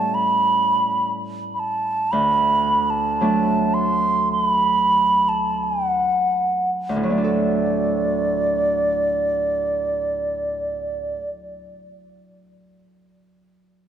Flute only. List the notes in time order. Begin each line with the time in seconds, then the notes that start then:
Already playing: A5
0.14 B5
1.54 B5
1.60 A5
2.12 B5
2.90 A5
3.74 C6
4.32 C6
4.46 B5
5.29 A5
5.64 F#5
7.06 D5